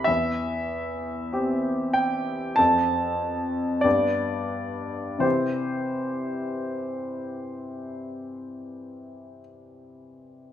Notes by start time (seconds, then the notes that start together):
Already playing: C4 G4 B5
0.04 E2 E5
1.33 C4 G4
1.93 G5
2.56 F2 C4 A4 A5
3.81 G2 B3 G4 D5
5.18 C3 E3 C4 G4 C5